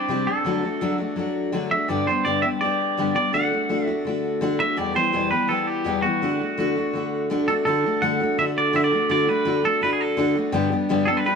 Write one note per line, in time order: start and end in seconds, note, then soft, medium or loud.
0.00 0.10 D4 medium
0.00 0.28 D5 medium
0.09 0.27 C3 medium
0.09 0.28 G3 medium
0.09 0.28 C4 medium
0.09 0.27 D4 medium
0.09 0.25 G4 medium
0.26 0.46 C4 soft
0.26 0.45 D4 soft
0.26 0.45 G4 medium
0.26 0.95 A4 medium
0.44 0.63 D3 medium
0.44 0.64 F#3 medium
0.44 0.64 A3 medium
0.44 0.62 D4 medium
0.44 0.60 F#4 medium
0.61 0.81 A3 soft
0.61 0.81 D4 soft
0.61 0.80 F#4 soft
0.81 0.99 D3 medium
0.81 1.00 F#3 medium
0.81 1.00 A3 medium
0.81 0.99 D4 medium
0.81 0.97 F#4 medium
0.98 1.16 A3 soft
0.98 1.17 D4 soft
0.98 1.17 F#4 medium
1.16 1.52 F#3 medium
1.16 1.52 A3 medium
1.16 1.53 D4 medium
1.16 1.53 F#4 medium
1.52 1.71 D3 medium
1.52 1.71 F#3 medium
1.52 1.71 A3 medium
1.52 1.71 D4 medium
1.52 1.69 F#4 medium
1.70 1.89 A3 soft
1.70 1.89 D4 soft
1.70 1.89 F#4 soft
1.70 1.89 E5 medium
1.88 2.07 G2 medium
1.88 2.07 D3 medium
1.88 2.07 G3 medium
1.88 2.08 B3 medium
1.88 2.07 D4 medium
1.88 2.06 G4 medium
1.88 2.07 D5 medium
2.07 2.25 G3 soft
2.07 2.26 B3 soft
2.07 2.26 D4 soft
2.07 2.25 G4 soft
2.07 2.26 C5 medium
2.25 2.43 G2 medium
2.25 2.44 D3 medium
2.25 2.44 G3 medium
2.25 2.44 B3 medium
2.25 2.43 D4 medium
2.25 2.41 G4 medium
2.25 2.42 D5 medium
2.42 2.60 G3 soft
2.42 2.62 B3 soft
2.42 2.62 D4 soft
2.42 2.61 G4 soft
2.42 2.47 E5 medium
2.61 2.97 G3 medium
2.61 2.98 B3 medium
2.61 2.98 D4 medium
2.61 3.15 D5 medium
2.65 2.99 G4 medium
2.97 3.15 G2 medium
2.97 3.16 D3 medium
2.97 3.16 G3 medium
2.97 3.15 B3 medium
2.97 3.15 D4 medium
2.97 3.13 G4 medium
3.15 3.32 G3 soft
3.15 3.33 B3 soft
3.15 3.33 D4 soft
3.15 3.33 G4 medium
3.15 3.34 D5 medium
3.33 3.51 D3 medium
3.33 3.52 A3 medium
3.33 3.51 D4 medium
3.33 3.49 F#4 medium
3.33 3.84 F#5 medium
3.51 3.68 A3 soft
3.51 3.69 D4 soft
3.51 3.69 F#4 soft
3.69 3.87 D3 medium
3.69 3.88 A3 medium
3.69 3.88 D4 medium
3.69 3.86 F#4 medium
3.84 4.05 F#4 medium
3.84 4.02 E5 medium
3.89 4.05 A3 soft
3.89 4.06 D4 soft
4.05 4.40 D3 medium
4.05 4.41 A3 medium
4.05 4.41 D4 medium
4.05 4.42 F#4 medium
4.41 4.59 D3 medium
4.41 4.60 A3 medium
4.41 4.60 D4 medium
4.41 4.58 F#4 loud
4.59 4.78 A3 soft
4.59 4.78 D4 soft
4.59 4.78 F#4 medium
4.59 4.78 E5 medium
4.77 4.95 E2 medium
4.77 4.95 B2 medium
4.77 4.95 E3 medium
4.77 4.95 G3 medium
4.77 4.94 B3 medium
4.77 4.92 G4 medium
4.77 4.96 D5 medium
4.94 5.12 E3 soft
4.94 5.13 G3 soft
4.94 5.13 B3 soft
4.94 5.13 G4 soft
4.94 5.30 C5 medium
5.12 5.31 E2 medium
5.12 5.31 B2 medium
5.12 5.32 E3 medium
5.12 5.32 G3 medium
5.12 5.31 B3 medium
5.12 5.30 G4 medium
5.31 5.46 E3 soft
5.31 5.48 G3 soft
5.31 5.49 B3 soft
5.31 5.49 G4 soft
5.31 5.50 B4 medium
5.48 5.84 E3 medium
5.48 5.85 G3 medium
5.48 5.85 B3 medium
5.48 5.86 G4 medium
5.48 5.67 A4 medium
5.67 6.02 G4 medium
5.84 6.03 E2 medium
5.84 6.03 B2 medium
5.84 6.04 E3 medium
5.84 6.04 G3 medium
5.84 6.04 B3 medium
5.84 6.02 G4 medium
6.02 6.22 G3 soft
6.02 6.22 B3 medium
6.02 7.25 F#4 medium
6.02 6.22 G4 medium
6.07 6.21 E3 soft
6.22 6.40 D3 medium
6.22 6.40 A3 medium
6.22 6.40 D4 medium
6.22 6.38 F#4 medium
6.39 6.57 A3 soft
6.39 6.59 D4 soft
6.39 6.58 F#4 soft
6.58 6.76 D3 medium
6.58 6.76 A3 medium
6.58 6.76 D4 medium
6.58 6.74 F#4 loud
6.76 6.94 A3 soft
6.76 6.95 D4 soft
6.76 6.94 F#4 medium
6.93 7.29 D3 medium
6.93 7.30 A3 medium
6.93 7.30 D4 medium
6.93 7.31 F#4 medium
7.30 7.48 D3 medium
7.30 7.48 A3 medium
7.30 7.48 D4 medium
7.30 7.47 F#4 medium
7.48 7.66 A3 soft
7.48 7.67 D4 medium
7.48 7.66 F#4 medium
7.48 7.53 A4 medium
7.65 7.84 D3 medium
7.65 7.85 A3 medium
7.65 7.85 D4 medium
7.65 7.83 F#4 medium
7.65 8.03 A4 medium
7.84 8.02 A3 soft
7.84 8.02 D4 medium
7.84 8.02 F#4 medium
8.02 8.20 D3 medium
8.02 8.20 A3 medium
8.02 8.21 D4 medium
8.02 8.19 F#4 medium
8.02 8.38 F#5 loud
8.20 8.38 A3 soft
8.20 8.39 D4 soft
8.20 8.38 F#4 medium
8.38 8.72 D3 medium
8.38 8.73 A3 medium
8.38 8.74 D4 medium
8.38 8.74 F#4 medium
8.38 8.44 E5 loud
8.58 8.75 D5 medium
8.73 8.92 D3 medium
8.73 8.92 A3 medium
8.73 8.92 D4 medium
8.73 8.90 F#4 medium
8.73 8.84 E5 loud
8.84 9.10 D5 loud
8.91 9.09 A3 soft
8.91 9.09 D4 medium
8.91 9.10 F#4 medium
9.09 9.28 D3 medium
9.09 9.28 A3 medium
9.09 9.27 D4 medium
9.09 9.26 F#4 medium
9.09 9.29 D5 loud
9.27 9.44 A3 soft
9.27 9.45 D4 soft
9.27 9.46 F#4 medium
9.27 9.65 B4 loud
9.45 9.64 D3 medium
9.45 9.64 A3 medium
9.45 9.63 D4 medium
9.45 9.61 F#4 medium
9.62 9.81 A3 soft
9.62 9.82 D4 soft
9.62 9.81 F#4 medium
9.62 9.82 A4 medium
9.81 10.16 D3 medium
9.81 10.17 A3 medium
9.81 10.17 D4 medium
9.81 10.18 F#4 medium
9.81 9.92 B4 medium
9.93 10.01 G#4 medium
10.01 10.36 A4 medium
10.17 10.36 D3 medium
10.17 10.36 A3 medium
10.17 10.35 D4 medium
10.17 10.34 F#4 medium
10.35 10.53 A3 soft
10.35 10.53 D4 medium
10.35 10.54 F#4 medium
10.52 10.71 G2 medium
10.52 10.71 D3 loud
10.52 10.72 G3 loud
10.52 10.72 B3 medium
10.52 10.71 D4 medium
10.52 10.69 G4 loud
10.70 10.89 G3 soft
10.70 10.89 B3 soft
10.70 10.90 D4 medium
10.70 10.89 G4 medium
10.89 11.08 G2 medium
10.89 11.08 D3 medium
10.89 11.08 G3 loud
10.89 11.08 B3 medium
10.89 11.07 D4 medium
10.89 11.06 G4 medium
11.05 11.26 D4 soft
11.05 11.26 G4 medium
11.05 11.08 G#4 medium
11.05 11.17 A4 medium
11.10 11.24 G3 soft
11.10 11.25 B3 soft
11.17 11.25 B4 medium
11.25 11.35 G3 medium
11.25 11.35 B3 medium
11.25 11.35 D4 medium
11.25 11.35 G4 medium
11.25 11.35 B4 medium